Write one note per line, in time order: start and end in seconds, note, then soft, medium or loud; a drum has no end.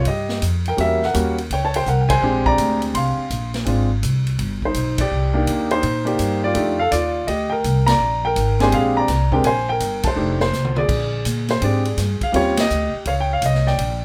0.05 0.41 G2 medium
0.05 0.41 G4 medium
0.05 0.40 D#5 medium
0.05 kick soft
0.05 ride medium
0.29 snare medium
0.42 0.77 F2 medium
0.42 kick soft
0.42 hi-hat pedal medium
0.42 ride medium
0.65 0.79 A#4 medium
0.65 0.80 G5 medium
0.65 ride soft
0.77 1.13 E2 medium
0.77 0.99 G3 medium
0.77 0.99 A#3 medium
0.77 0.99 C#4 medium
0.77 1.00 F#4 medium
0.77 1.04 E5 medium
0.77 kick soft
0.77 ride medium
0.82 1.02 A#4 medium
1.03 1.38 A#4 medium
1.03 1.37 F#5 loud
1.03 snare soft
1.14 1.49 D#2 medium
1.14 1.35 G3 medium
1.14 1.35 A#3 medium
1.14 1.36 C#4 medium
1.14 1.36 F#4 medium
1.14 kick soft
1.14 hi-hat pedal medium
1.14 ride medium
1.38 ride soft
1.50 1.85 C#2 medium
1.50 1.63 C#5 medium
1.50 1.64 G5 medium
1.50 kick soft
1.50 ride medium
1.65 1.75 C#5 medium
1.65 1.76 A5 medium
1.74 1.87 C5 medium
1.74 1.86 G5 medium
1.74 ride medium
1.86 2.21 C2 medium
1.86 2.01 A#4 medium
1.86 2.01 F#5 medium
1.86 kick soft
1.86 hi-hat pedal soft
2.01 2.10 G5 medium
2.09 2.43 C5 medium
2.09 2.47 G#5 loud
2.09 kick medium
2.09 ride medium
2.21 2.57 A#1 medium
2.21 3.23 G#3 medium
2.21 3.23 C4 medium
2.21 3.23 D4 medium
2.21 3.24 G4 medium
2.46 2.80 D5 medium
2.46 2.80 A#5 loud
2.46 kick medium
2.58 2.93 D2 medium
2.58 kick soft
2.58 hi-hat pedal medium
2.58 ride medium
2.82 ride soft
2.94 3.16 C2 medium
2.94 3.51 F5 medium
2.94 3.50 C6 medium
2.94 kick soft
2.94 ride medium
3.18 muted upright bass stroke soft
3.30 3.66 A#1 medium
3.30 kick soft
3.30 hi-hat pedal medium
3.30 ride medium
3.54 snare soft
3.54 ride soft
3.65 4.02 G#1 medium
3.65 3.87 G#3 medium
3.65 3.87 C4 medium
3.65 3.88 D4 medium
3.65 3.88 F4 medium
3.65 kick soft
3.65 ride medium
4.03 4.38 C2 medium
4.03 kick soft
4.03 hi-hat pedal medium
4.03 ride medium
4.27 ride soft
4.39 4.74 G1 medium
4.39 kick soft
4.39 ride medium
4.62 4.98 D#4 medium
4.62 5.01 C5 medium
4.62 kick soft
4.74 5.10 B1 medium
4.74 kick soft
4.74 hi-hat pedal soft
4.74 ride medium
4.98 5.34 G4 medium
4.98 5.45 D5 medium
4.98 kick medium
4.98 ride medium
5.11 5.46 C2 medium
5.33 5.80 A#3 medium
5.33 5.80 D4 medium
5.33 5.71 D#4 medium
5.33 5.81 G4 medium
5.47 5.82 D#2 medium
5.47 kick soft
5.47 hi-hat pedal medium
5.47 ride medium
5.71 6.05 D#4 medium
5.71 6.39 C5 medium
5.71 ride soft
5.83 6.18 A#2 medium
5.83 kick soft
5.83 ride medium
6.05 6.52 A#3 medium
6.05 6.53 D#4 medium
6.05 6.53 G4 medium
6.05 6.43 D5 medium
6.05 ride soft
6.19 6.54 G2 medium
6.19 kick soft
6.19 hi-hat pedal medium
6.19 ride medium
6.44 6.78 F4 medium
6.44 6.77 D5 medium
6.53 6.91 F2 medium
6.53 6.76 A3 medium
6.53 6.76 D4 medium
6.53 6.77 D#4 medium
6.53 6.77 G4 medium
6.53 kick soft
6.53 ride medium
6.79 6.92 A4 medium
6.79 6.92 F5 medium
6.91 7.27 D#2 medium
6.91 7.26 F4 medium
6.91 7.29 D5 medium
6.91 kick soft
6.91 hi-hat pedal medium
6.91 ride medium
7.27 7.63 D2 medium
7.27 7.50 G4 medium
7.27 7.52 D#5 medium
7.27 kick soft
7.27 ride medium
7.50 7.85 A#4 medium
7.50 7.88 G5 medium
7.64 7.99 C2 medium
7.64 kick soft
7.64 hi-hat pedal soft
7.64 ride medium
7.87 8.22 D5 medium
7.87 8.24 A#5 loud
7.87 snare medium
7.87 ride medium
7.99 8.35 A#1 medium
8.25 8.59 A#4 medium
8.25 8.58 G5 loud
8.36 8.71 G#1 medium
8.36 kick soft
8.36 hi-hat pedal soft
8.36 ride medium
8.59 9.06 G#3 medium
8.59 9.06 C4 medium
8.59 9.06 D4 medium
8.59 9.07 G4 medium
8.59 8.73 G#5 medium
8.59 snare soft
8.59 ride soft
8.63 8.73 C5 medium
8.72 9.07 A#1 medium
8.72 8.95 F5 medium
8.72 kick soft
8.72 ride medium
8.76 8.96 G#4 medium
8.97 9.31 D5 medium
8.97 9.30 A#5 loud
9.08 9.44 C2 medium
9.08 kick soft
9.08 snare soft
9.08 hi-hat pedal soft
9.08 ride medium
9.31 9.43 G#3 medium
9.31 9.43 C4 medium
9.31 9.43 D4 medium
9.31 9.44 G4 medium
9.31 9.45 A#4 medium
9.31 9.45 G5 medium
9.31 kick medium
9.44 9.79 A#1 medium
9.44 9.68 C5 medium
9.44 9.69 G#5 medium
9.44 kick soft
9.44 ride medium
9.69 10.04 A#4 medium
9.69 10.02 G5 medium
9.80 10.16 G1 medium
9.80 kick soft
9.80 hi-hat pedal medium
9.80 ride medium
10.03 10.73 A5 medium
10.03 kick medium
10.03 ride medium
10.07 10.40 C5 medium
10.15 10.52 F1 medium
10.15 10.37 A3 medium
10.15 10.38 D4 soft
10.15 10.38 D#4 medium
10.15 10.38 G4 medium
10.40 10.75 C5 medium
10.40 snare soft
10.53 10.88 C2 medium
10.53 snare soft
10.53 hi-hat pedal soft
10.65 mid tom medium
10.76 11.46 G#4 medium
10.76 11.23 D5 medium
10.76 mid tom medium
10.89 11.24 A#1 medium
10.89 kick medium
10.89 crash medium
11.25 11.60 A#2 medium
11.25 kick soft
11.25 hi-hat pedal medium
11.25 ride medium
11.48 11.61 C5 medium
11.48 snare soft
11.48 ride soft
11.61 11.97 G#2 medium
11.61 11.82 G#3 medium
11.61 11.83 C4 medium
11.61 11.83 D4 medium
11.61 11.84 G4 medium
11.61 12.31 G#4 medium
11.61 11.97 D5 medium
11.61 kick soft
11.61 ride medium
11.85 ride soft
11.97 12.20 G2 medium
11.97 kick soft
11.97 snare soft
11.97 hi-hat pedal medium
11.97 ride medium
12.21 12.34 F5 medium
12.21 muted upright bass stroke soft
12.21 kick medium
12.21 ride soft
12.32 12.69 D#2 medium
12.32 12.54 G3 medium
12.32 12.55 C4 medium
12.32 12.55 C#4 medium
12.32 12.55 F4 medium
12.32 13.03 G4 medium
12.32 12.59 C#5 medium
12.32 kick soft
12.32 ride medium
12.57 12.93 D#5 loud
12.57 snare medium
12.57 ride medium
12.70 12.92 D2 medium
12.70 hi-hat pedal medium
12.94 muted upright bass stroke soft
13.05 13.41 C#2 medium
13.05 13.75 C#5 medium
13.05 13.13 F5 medium
13.05 kick soft
13.05 ride medium
13.20 13.31 G5 medium
13.33 13.44 F5 medium
13.42 13.77 C2 medium
13.42 13.68 D#5 medium
13.42 kick soft
13.42 hi-hat pedal medium
13.42 ride medium
13.55 snare soft
13.67 14.05 D5 medium
13.67 14.00 G5 medium
13.67 snare soft
13.78 14.05 A#1 medium
13.78 kick soft
13.78 ride medium